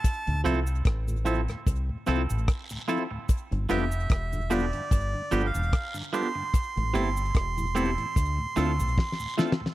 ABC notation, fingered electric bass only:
X:1
M:4/4
L:1/16
Q:"Swing 16ths" 1/4=74
K:Ddor
V:1 name="Fingered electric bass" clef=bass
z D,, C,,2 A,,,3 z C,, z C,, A,,, z4 | z G,,, F,,,2 E,,,3 z G,,, z G,,, E,,, z4 | z A,,, G,,,2 E,,,3 z D,, z D,, B,,, z4 |]